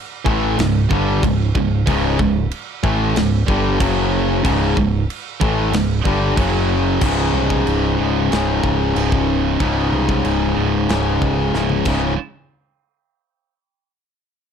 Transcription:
0.25 picked electric bass A1, distorted electric guitar A2 E3 A3, kick
0.58 picked electric bass C#1, distorted electric guitar C#2 G#2, snare, crash
0.89 picked electric bass G1, distorted electric guitar G2 D3 G3, kick
1.22 picked electric bass C#1, distorted electric guitar C#2 G#2, kick, crash
1.55 picked electric bass C#1, distorted electric guitar C#2 G#2, kick
1.86 picked electric bass C#1, distorted electric guitar C#2 G#2 C#3, kick, crash
2.19 picked electric bass C#1, distorted electric guitar C#2 G#2, kick
2.51 crash
2.83 picked electric bass A1, distorted electric guitar A2 E3 A3, kick
3.15 picked electric bass C#1, distorted electric guitar C#2 G#2, snare, crash
3.47 picked electric bass G1, distorted electric guitar G2 D3 G3, kick
3.79 picked electric bass F#1, distorted electric guitar F#2 C#3 F#3, kick, crash
4.43 picked electric bass C#1, distorted electric guitar C#2 G#2 C#3, kick, crash
4.76 picked electric bass C#1, distorted electric guitar C#2 G#2, kick
5.10 crash
5.40 picked electric bass A1, distorted electric guitar A2 E3 A3, kick
5.72 picked electric bass C#1, distorted electric guitar C#2 G#2, snare, crash
6.04 picked electric bass G1, distorted electric guitar G2 D3 G3, kick
6.37 picked electric bass F#1, distorted electric guitar F#2 C#3 F#3, kick, crash
7.00 picked electric bass C#1, distorted electric guitar C#2 G#2 C#3, kick, crash, china
7.33 picked electric bass C2
7.50 kick
7.66 picked electric bass C#1, china
7.97 picked electric bass C#1, distorted electric guitar C#2 G#2 C#3
8.31 picked electric bass C#1, distorted electric guitar C#2 G#2 C#3, snare, china
8.64 picked electric bass C#1, kick
8.95 picked electric bass C#1, distorted electric guitar C#2 G#2 C#3, china
9.12 kick
9.58 picked electric bass C#1, distorted electric guitar C#2 G#2 C#3, kick, china
9.92 picked electric bass C2
10.09 kick
10.24 picked electric bass C#1, china
10.56 picked electric bass C#1, distorted electric guitar C#2 G#2 C#3
10.88 picked electric bass C#1, distorted electric guitar C#2 G#2 C#3, snare, china
11.22 picked electric bass C#1, kick
11.53 picked electric bass C#1, distorted electric guitar C#2 G#2 C#3, snare
11.69 high tom
11.85 picked electric bass C#1, distorted electric guitar C#2 G#2 C#3, kick, crash

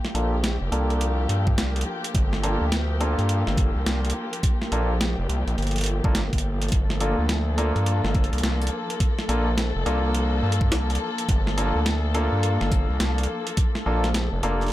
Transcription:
Already playing: string section F3 A#3 G4, grand piano A#3 D4 F4 A4
0.05 snare
0.15 analog synth bass A#1, grand piano A#3 D4 F4 A4, closed hi-hat
0.44 snare, closed hi-hat
0.61 analog synth bass F1
0.72 analog synth bass C2, grand piano A#3 D4 F4 A4, closed hi-hat
0.90 closed hi-hat
1.01 closed hi-hat
1.29 analog synth bass G2, closed hi-hat
1.47 kick
1.58 analog synth bass C2, snare, closed hi-hat
1.76 closed hi-hat
1.81 closed hi-hat
2.04 closed hi-hat
2.15 analog synth bass G1, kick, closed hi-hat
2.33 snare
2.43 grand piano A#3 D4 F4 A4, closed hi-hat
2.61 analog synth bass D2
2.72 snare, closed hi-hat
3.01 grand piano A#3 D4 F4 A4, closed hi-hat
3.19 analog synth bass G2, closed hi-hat
3.29 closed hi-hat
3.47 analog synth bass G1, snare
3.58 kick, closed hi-hat
3.76 analog synth bass C2
3.86 analog synth bass C2, snare, closed hi-hat
4.05 closed hi-hat
4.10 closed hi-hat
4.33 closed hi-hat
4.43 kick, closed hi-hat
4.62 snare
4.72 analog synth bass A#1, grand piano A#3 D4 F4 A4, closed hi-hat
5.01 snare, closed hi-hat
5.19 analog synth bass F1
5.29 analog synth bass C2, closed hi-hat
5.47 analog synth bass A#1, closed hi-hat
5.58 analog synth bass G1, closed hi-hat
5.62 closed hi-hat
5.67 closed hi-hat
5.71 closed hi-hat
5.76 closed hi-hat
5.78 closed hi-hat
5.81 closed hi-hat
5.84 closed hi-hat
5.86 closed hi-hat
6.04 analog synth bass G1, grand piano A#3 D4 F4 A4, kick
6.15 snare, closed hi-hat
6.33 analog synth bass G1, kick, closed hi-hat
6.38 closed hi-hat
6.62 closed hi-hat
6.68 kick, closed hi-hat
6.72 analog synth bass G1, string section A4, closed hi-hat
6.90 snare
7.00 grand piano A#3 D4 F4 A4, closed hi-hat
7.19 analog synth bass D2
7.29 snare, closed hi-hat
7.58 grand piano A#3 D4 F4 A4, closed hi-hat
7.76 analog synth bass G2, closed hi-hat
7.86 closed hi-hat
8.04 analog synth bass G1, snare
8.15 kick, closed hi-hat
8.24 closed hi-hat
8.33 analog synth bass C2, closed hi-hat
8.38 closed hi-hat
8.43 analog synth bass C2, snare, closed hi-hat
8.62 closed hi-hat
8.67 closed hi-hat
8.90 closed hi-hat
9.00 kick, closed hi-hat
9.19 snare
9.29 analog synth bass A#1, grand piano A#3 D4 F4 A4, closed hi-hat
9.58 snare, closed hi-hat
9.76 analog synth bass F1
9.86 analog synth bass C2, grand piano A#3 D4 F4 A4, closed hi-hat
10.14 closed hi-hat
10.43 analog synth bass G2
10.52 closed hi-hat
10.61 kick
10.71 analog synth bass C2, snare, closed hi-hat
10.90 closed hi-hat
10.95 closed hi-hat
11.18 closed hi-hat
11.29 analog synth bass G1, kick, closed hi-hat
11.47 snare
11.57 grand piano A#3 D4 F4 A4, closed hi-hat
11.75 analog synth bass D2
11.86 snare, closed hi-hat
12.14 grand piano A#3 D4 F4 A4, closed hi-hat
12.32 analog synth bass G2
12.43 closed hi-hat
12.61 analog synth bass G1, snare
12.72 kick, closed hi-hat
12.90 analog synth bass C2
13.00 analog synth bass C2, snare, closed hi-hat
13.18 closed hi-hat
13.23 closed hi-hat
13.47 closed hi-hat
13.57 kick, closed hi-hat
13.75 snare
13.86 analog synth bass A#1, grand piano A#3 D4 F4 A4
14.04 snare, closed hi-hat
14.14 snare, closed hi-hat
14.33 analog synth bass F1
14.43 analog synth bass F1, grand piano A#3 D4 F4 A4, closed hi-hat
14.61 closed hi-hat
14.63 closed hi-hat
14.66 closed hi-hat
14.68 closed hi-hat

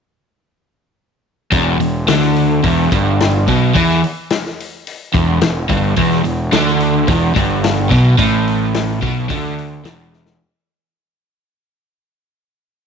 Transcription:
1.52 fingered electric bass E1, overdriven electric guitar E2, kick, open hi-hat
1.80 fingered electric bass E1, overdriven electric guitar E2, open hi-hat
2.08 fingered electric bass D2, overdriven electric guitar D3, snare, open hi-hat
2.22 snare
2.36 open hi-hat
2.63 fingered electric bass E1, overdriven electric guitar E2, kick, open hi-hat
2.92 fingered electric bass G1, overdriven electric guitar G2, kick, open hi-hat
3.20 snare, open hi-hat
3.47 fingered electric bass B1, overdriven electric guitar B2, kick, open hi-hat
3.75 fingered electric bass E2, overdriven electric guitar E3, kick, open hi-hat
3.90 snare
4.04 open hi-hat
4.30 snare, open hi-hat
4.46 snare
4.60 open hi-hat
4.87 open hi-hat
5.14 fingered electric bass E1, overdriven electric guitar E2, kick, open hi-hat
5.41 fingered electric bass E1, overdriven electric guitar E2, snare, open hi-hat
5.69 fingered electric bass G1, overdriven electric guitar G2, kick, open hi-hat
5.96 fingered electric bass E1, overdriven electric guitar E2, kick, open hi-hat
6.11 snare
6.24 fingered electric bass E1, overdriven electric guitar E2, open hi-hat
6.52 fingered electric bass D2, overdriven electric guitar D3, snare, open hi-hat
6.67 snare
6.80 open hi-hat
7.07 fingered electric bass E1, overdriven electric guitar E2, kick, open hi-hat
7.34 fingered electric bass G1, overdriven electric guitar G2, kick, open hi-hat
7.64 snare, open hi-hat
7.89 fingered electric bass B1, overdriven electric guitar B2, kick, open hi-hat
8.17 fingered electric bass A1, overdriven electric guitar A2, kick, open hi-hat
8.48 open hi-hat
8.74 snare, open hi-hat
9.02 fingered electric bass B1, overdriven electric guitar B2, kick, open hi-hat
9.29 fingered electric bass D2, overdriven electric guitar D3, kick, open hi-hat
9.58 open hi-hat
9.84 fingered electric bass E1, overdriven electric guitar E2, snare, open hi-hat
10.13 snare
10.26 snare

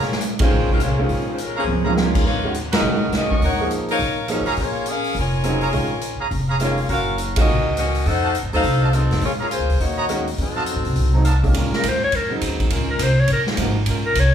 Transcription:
Already playing: upright bass A#1, saxophone section A#3 F4 G#4 C#5
0.02 snare
0.12 snare
0.21 closed hi-hat
0.39 upright piano D#3 G#3 C#4 F4, saxophone section A#3 F4 G#4 C5, kick, ride
0.50 upright bass C#2
0.69 saxophone section G#3 C#4 F4 A#4, kick
0.78 upright bass C2, saxophone section A#3 F4 G#4 C#5, cross-stick, closed hi-hat
0.98 upright piano D#3 G#3 C#4 F4, saxophone section F3 A#3 C#4 G#4
1.09 upright bass A#1, kick, open hi-hat
1.30 saxophone section G#3 C#4 F4 C5
1.38 saxophone section G#3 C#4 F4 A#4, closed hi-hat
1.56 saxophone section F3 A#3 C#4 G#4, trumpet section G#4 C#5 F5 A#5
1.67 upright bass C#2, high tom
1.85 upright piano D#3 G#3 C#4 F4, trumpet section G#4 C#5 F5 A#5, high tom
1.97 saxophone section A#3 F4 G#4 C#5, snare
2.15 kick, crash
2.25 upright bass D#2, saxophone section D#4 A#4 C#5 F5, kick
2.44 upright piano D#3 G#3 C#4 F#4
2.54 closed hi-hat
2.73 saxophone section C#4 F#4 A#4 D#5, trumpet section F#4 C#5 D#5 A#5, snare, ride
2.82 upright bass A#1, upright piano D#3 G#3 C#4 F#4
3.11 upright bass C#2, saxophone section D#5, cross-stick, snare, closed hi-hat
3.15 saxophone section C#4 F#4 A#4
3.30 trumpet section F#4 C#5 D#5 C#6, kick
3.41 upright bass D#2, saxophone section D#4 A#4 C#5 F#5, kick, open hi-hat
3.60 upright piano F3 A#3 D#4 G#4
3.71 closed hi-hat
3.88 saxophone section D#4 A#4 C#5 F5, open hi-hat
3.99 upright bass A#1, kick, open hi-hat
4.28 upright piano F3 A#3 D#4 G#4, saxophone section F#3 C#4 D#4, cross-stick, closed hi-hat
4.32 saxophone section A#4
4.45 trumpet section G#4 C#5 F5 A#5, muted upright bass stroke, open hi-hat
4.57 upright bass A#1, kick, open hi-hat
4.61 saxophone section A#3 F4 G#4 C#5
4.86 saxophone section C#4 G#4 A#4 F5, closed hi-hat
5.04 open hi-hat
5.15 upright bass F1, kick, open hi-hat
5.19 saxophone section F4 A#4 C#5 G#5
5.43 upright piano C#3 F#3 C4 D#4, cross-stick, closed hi-hat
5.61 trumpet section G#4 C#5 F5 A#5, open hi-hat
5.72 upright bass A#1, upright piano D#3 G#3 C#4 F4, kick, open hi-hat
6.01 closed hi-hat
6.20 trumpet section G#4 C#5 F5 A#5, muted upright bass stroke
6.31 upright bass F1, kick, open hi-hat
6.48 trumpet section G#4 C#5 F5 A#5
6.59 upright piano D#3 G#3 C#4 F4, saxophone section A#3 F4 G#4 C#5, cross-stick, closed hi-hat
6.78 open hi-hat
6.89 upright bass F#1, saxophone section C#4 F#4 A#4 F5, trumpet section F#4 C#5 F5 A#5, kick, open hi-hat
7.18 closed hi-hat
7.36 upright bass C#2, upright piano D#3 G#3 C#4 F4, saxophone section C#4 F#4 A#4 D#5, kick, ride
7.47 upright bass C#2
7.77 saxophone section C#4 F#4 A#4 D#5, cross-stick, closed hi-hat
7.95 open hi-hat
8.06 upright bass F2, saxophone section D#4 A4 C5 F#5, kick, open hi-hat
8.23 trumpet section F#4 D#5 F5 A5
8.35 closed hi-hat
8.43 upright bass F#2
8.53 upright bass D#2, upright piano F#3 A3 C4 D#4, saxophone section D#4 A4 C5 F5, open hi-hat
8.63 upright bass C2, kick, open hi-hat
8.82 trumpet section F#4 D#5 F5 A5
8.93 saxophone section F#3 C4 D#4 A4, cross-stick, closed hi-hat
9.10 upright bass F2, snare, open hi-hat
9.21 upright bass A#1, saxophone section A#3 F4 G#4 C#5, kick, open hi-hat
9.39 saxophone section G#3 C#4 F4 A#4, trumpet section G#4 C#5 F5 A#5
9.51 saxophone section A#3 F4 G#4 C5, closed hi-hat
9.60 upright bass C#2
9.69 upright bass D2, open hi-hat
9.80 upright bass D#2, saxophone section A#3 D#4 F#4 C#5, kick, open hi-hat
9.97 trumpet section F#4 C#5 D#5 A#5
10.08 upright piano D#3 G#3 C#4 F#4, cross-stick, closed hi-hat
10.27 open hi-hat
10.38 upright bass F2, saxophone section F#3 C4 D#4 A4, kick, open hi-hat
10.56 trumpet section F#4 D#5 F5 A5
10.66 closed hi-hat
10.76 upright bass A2
10.85 upright bass C3, open hi-hat
10.96 upright bass C2, kick, open hi-hat
11.13 upright piano F#3 A3 C4 D#4
11.24 trumpet section F#4 D#5 F5 A5, cross-stick, closed hi-hat
11.43 upright piano A#2 D#3 G#3 C#4 F4, kick, open hi-hat
11.54 upright bass C#2, trombone section G#3 C#4 F4 A#4, kick, ride
11.71 clarinet A#4, muted upright bass stroke, snare
11.83 upright bass D#2, kick, hi-hat pedal, ride
11.88 clarinet C5
12.04 clarinet C#5
12.12 upright bass F2, clarinet A#4, kick, ride
12.30 upright piano C#3 F#3 C4 D#4
12.41 upright bass D#2, kick, hi-hat pedal, ride
12.60 kick, ride
12.70 upright bass C#2, trombone section G#3 C#4 F4 A#4, kick, ride
12.90 clarinet A#4
12.99 upright bass C2, kick, hi-hat pedal, ride
13.03 clarinet C5
13.20 clarinet C#5
13.28 upright bass A#1, kick, ride
13.33 clarinet A#4
13.47 snare
13.57 upright bass G#1, upright piano F3 A#3 D#4 F#4, kick, hi-hat pedal, ride
13.86 upright bass A#1, trombone section G#3 C#4 F4 A#4, kick, ride
14.07 clarinet A#4
14.15 upright bass C2, kick, hi-hat pedal, ride
14.20 clarinet C#5

